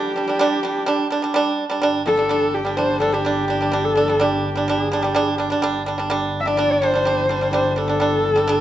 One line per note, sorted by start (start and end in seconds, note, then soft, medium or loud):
0.00 0.11 G3 medium
0.00 0.11 D4 loud
0.00 1.55 G4 medium
0.16 0.25 G3 medium
0.16 0.26 D4 medium
0.28 0.37 G3 medium
0.28 0.38 D4 medium
0.39 0.59 G3 loud
0.39 0.59 D4 loud
0.63 0.82 G3 medium
0.63 0.83 D4 medium
0.86 1.06 G3 loud
0.86 1.06 D4 loud
1.10 1.20 G3 medium
1.10 1.21 D4 medium
1.22 1.32 G3 medium
1.22 1.33 D4 medium
1.34 1.63 G3 loud
1.34 1.64 D4 loud
1.70 1.79 G3 medium
1.70 1.80 D4 medium
1.81 5.63 G1 medium
1.81 2.01 G3 medium
1.81 2.02 D4 loud
2.06 2.15 G3 medium
2.06 2.16 D4 medium
2.06 2.56 A4 medium
2.17 2.27 G3 medium
2.17 2.28 D4 medium
2.29 2.58 G3 medium
2.29 2.59 D4 medium
2.55 2.78 G4 medium
2.65 2.75 G3 medium
2.65 2.75 D4 medium
2.77 2.96 G3 medium
2.77 2.97 D4 medium
2.77 3.00 C5 medium
3.00 3.10 G3 medium
3.00 3.11 D4 medium
3.00 3.15 A4 medium
3.12 3.22 G3 medium
3.12 3.23 D4 medium
3.12 3.86 G4 medium
3.25 3.44 G3 medium
3.25 3.45 D4 medium
3.48 3.58 G3 medium
3.48 3.59 D4 medium
3.61 3.70 G3 medium
3.61 3.71 D4 medium
3.72 3.91 G3 medium
3.72 3.92 D4 loud
3.85 4.24 A4 medium
3.96 4.05 G3 medium
3.96 4.06 D4 medium
4.08 4.18 G3 medium
4.08 4.18 D4 medium
4.20 4.48 G3 medium
4.20 4.49 D4 loud
4.20 4.83 G4 medium
4.55 4.65 G3 medium
4.55 4.66 D4 medium
4.68 4.87 G3 medium
4.68 4.88 D4 medium
4.83 5.00 G#4 medium
4.92 5.01 G3 medium
4.92 5.02 D4 medium
5.00 5.13 G3 medium
5.00 5.17 G4 medium
5.04 5.13 D4 medium
5.14 5.34 G3 medium
5.14 5.35 D4 loud
5.14 5.34 G#4 medium
5.34 5.93 G4 medium
5.38 5.48 G3 medium
5.38 5.49 D4 medium
5.50 5.60 G3 medium
5.50 5.61 D4 medium
5.62 8.61 G1 medium
5.62 5.82 G3 loud
5.62 5.82 D4 loud
5.86 5.96 G3 medium
5.86 5.97 D4 medium
5.98 6.08 G3 medium
5.98 6.08 D4 medium
6.10 6.39 G3 loud
6.10 6.39 D4 loud
6.40 6.49 E5 medium
6.46 6.55 G3 medium
6.46 6.56 D4 medium
6.46 6.73 D5 medium
6.57 6.77 G3 medium
6.57 6.77 D4 medium
6.72 7.54 C5 loud
6.82 6.91 G3 medium
6.82 6.92 D4 medium
6.94 7.03 G3 medium
6.94 7.04 D4 medium
7.05 7.25 G3 medium
7.05 7.25 D4 medium
7.29 7.39 G3 medium
7.29 7.40 D4 medium
7.41 7.51 G3 medium
7.41 7.51 D4 medium
7.53 7.72 G3 medium
7.53 7.73 D4 medium
7.53 7.71 C5 medium
7.71 7.80 C5 medium
7.76 7.86 G3 medium
7.76 7.87 D4 medium
7.76 8.61 A4 medium
7.88 7.98 G3 medium
7.88 7.99 D4 medium
8.00 8.29 G3 medium
8.00 8.30 D4 medium
8.36 8.46 G3 medium
8.36 8.46 D4 medium
8.47 8.61 G3 loud
8.47 8.61 D4 loud